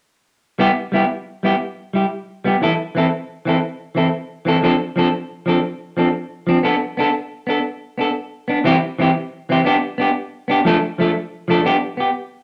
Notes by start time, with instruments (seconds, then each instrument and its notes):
0.58 clean electric guitar G3 B3 E4 G4
0.92 clean electric guitar G3 B3 E4 G4
1.43 clean electric guitar G3 B3 E4 G4
1.93 clean electric guitar G3 E4 G4
2.44 clean electric guitar G3 B3 G4, muted clean electric guitar stroke
2.61 clean electric guitar E3 E4 A4, muted clean electric guitar stroke
2.95 clean electric guitar E3 C4 E4 A4
3.45 clean electric guitar E3 C4 E4 A4
3.95 clean electric guitar E3 C4 E4 A4
4.45 clean electric guitar E3 C4 E4 A4
4.63 clean electric guitar F3 C4 D4 A4
4.96 clean electric guitar F3 C4 D4 A4
5.46 clean electric guitar F3 C4 D4 A4
5.97 clean electric guitar F3 C4 D4 A4
6.47 clean electric guitar F3 C4 D4, muted clean electric guitar stroke
6.63 clean electric guitar B3 D4 A4
6.97 clean electric guitar B3 D4 A4
7.47 clean electric guitar B3 D4 A4
7.98 clean electric guitar B3 D4 A4
8.48 clean electric guitar B3 D4
8.64 clean electric guitar E3 C4 E4 G4
8.99 clean electric guitar E3 C4 E4 G4
9.49 clean electric guitar E3 C4 E4 G4
9.65 clean electric guitar B3 D4 G4
9.98 clean electric guitar B3 D4 G4
10.48 clean electric guitar B3 D4 G4
10.65 clean electric guitar F3 A3 D4 A4
10.98 clean electric guitar F3 A3 D4 A4
11.48 clean electric guitar F3 A3 D4 A4
11.65 clean electric guitar B3 D4 G4
11.97 clean electric guitar B3 G4